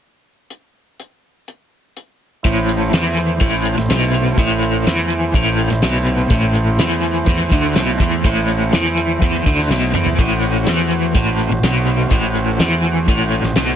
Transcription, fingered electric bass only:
2.45 A1
2.93 E2
3.41 A1
3.79 A1
3.92 B1
4.38 A1
4.87 E2
5.34 A1
5.72 A1
5.84 B1
6.30 A1
6.80 E2
7.27 E2
7.52 D2
7.76 B1
8.01 E2
8.25 A1
8.73 E2
9.22 E2
9.46 D2
9.70 B1
9.95 E2
10.19 A1
10.67 E2
11.15 A1
11.52 A1
11.63 B1
12.11 A1
12.60 E2
13.08 A1
13.44 A1
13.56 B1

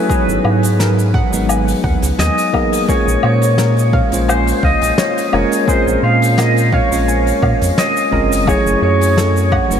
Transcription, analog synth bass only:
0.28 G#1
0.45 G#2
1.33 G#1
1.84 D#2
2.02 C#2
2.19 D#2
3.07 A#1
3.24 A#2
4.12 A#1
4.63 C#2
4.82 A#1
5.33 F1
5.87 A#1
6.03 A#2
6.92 A#1
7.42 A#2
7.62 F2
8.12 F#1
8.66 F#1
8.82 F#2
9.70 F#1

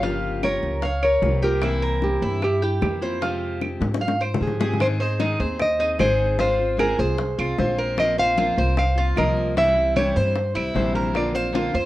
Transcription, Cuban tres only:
0.03 F4
0.43 A#4
0.83 F5
1.03 C#5
1.43 G4
1.63 E4
1.82 A#4
2.22 E4
2.62 G4
3.02 C5
3.22 F4
4.01 F5
4.21 C5
4.60 G#4
5.00 C5
5.20 D#4
5.40 C5
5.80 D#4
5.99 G#4
6.40 F4
6.79 G#4
6.99 C5
7.39 F4
7.79 A#4
8.19 C5
8.38 F4
8.58 C5
8.98 F4
9.18 A#4
9.58 E4
9.96 G4
10.16 C5
10.55 E4
10.95 A#4
11.35 C5
11.55 F4
11.75 C5

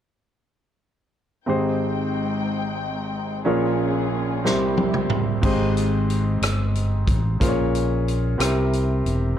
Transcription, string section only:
1.47 G#3 C4 D#4 G5
3.46 A#3 C#4 F4 G#4
4.45 C4 E4 G4

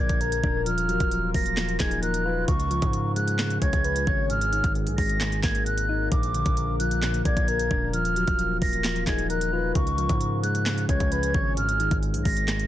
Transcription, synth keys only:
Already playing: A#2 D3 F3
0.00 A#3
0.21 A#2
0.44 D4
0.67 F3
0.89 F#3
1.12 F3
1.35 A#3
1.57 F3
1.80 D#4
2.02 F3
2.25 F4
2.48 C#3
2.71 F3
2.94 C#3
3.16 G#3
3.39 C#3
3.62 C#4
3.85 C#3
4.07 C#5
4.30 G#2
4.52 D#3
4.76 G#2
4.98 G#3
5.21 G#2
5.43 A#3
5.66 G#2
5.89 D#4
6.12 A#2
6.35 D3
6.57 A#2
6.80 F3
7.03 A#2
7.25 A#3
7.48 A#2
7.71 D4
7.94 F3
8.16 F#3
8.39 F3
8.62 A#3
8.85 F3
9.07 D#4
9.30 F3
9.53 F4
9.75 C#3
9.98 F3
10.21 C#3
10.43 G#3
10.66 C#3
10.89 C#4
11.12 C#3
11.35 C#5
11.57 G#2
11.80 D#3
12.03 G#2
12.26 G#3
12.48 G#2

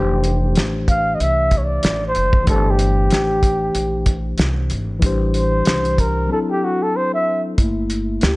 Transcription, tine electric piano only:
Already playing: E3 A3 D4 G4 C5
2.44 E3 A3 D4
2.49 G4 C5
4.99 E3 G3 D4
5.05 G4 C5
6.27 F#3 C4 D4
6.33 E4 A4
7.58 A3 A#3 E4
8.23 G4

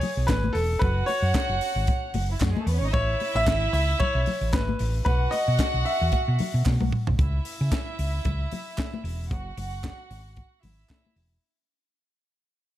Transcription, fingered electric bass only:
0.17 B1
0.29 G#1
0.54 E1
0.82 F#1
1.22 F#2
1.49 F#1
1.76 G#1
2.14 F#1
2.41 F#2
2.66 E2
2.81 G#1
2.94 A1
3.35 A1
3.47 G#1
3.73 C#2
4.15 B1
4.41 A1
4.53 G#1
4.80 A1
5.06 B1
5.48 B2
5.74 B1
6.01 E2
6.28 B2
6.54 B2
6.66 B2
6.82 B1
7.08 B1
7.19 C#2
7.61 C#3
7.99 C#2
8.25 C#2
9.04 E1
9.31 F#1
9.57 F#1
10.10 G#1
10.63 G#1
11.16 E1

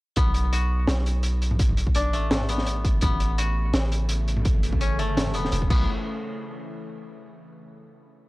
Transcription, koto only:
0.17 B3
0.52 F#4
1.95 D4
2.13 A3
2.49 B3
3.02 B3
3.38 F#4
4.81 C#4
4.99 A3
5.35 B3
5.70 B3

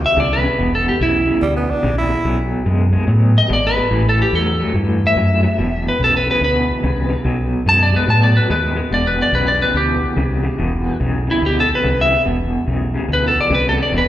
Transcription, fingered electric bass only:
0.17 C2
0.59 E1
1.01 B1
1.42 D2
1.84 A#1
2.25 B1
2.66 F#2
3.07 A2
3.50 G#1
3.91 A1
4.33 E2
4.74 G2
5.16 F#2
5.58 E1
6.00 B1
6.41 D2
6.84 C2
7.25 B1
7.66 F#2
8.08 A2
8.50 D#2
8.91 E1
9.32 B1
9.74 D2
10.17 C2
10.59 E1
11.01 B1
11.42 D2
11.84 C2
12.26 E1
12.67 B1
13.09 D2
13.50 C2
13.92 E1

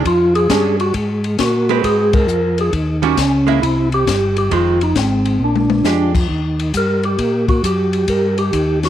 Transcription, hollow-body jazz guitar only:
0.50 G#3 C#4 D4
1.69 G#3 C4 F#4 B4
3.02 D#3 G3 C#4 F#4
3.47 G#3 A#3 E4
4.51 D#3 G#3 C4
5.85 G#3 D4 G4

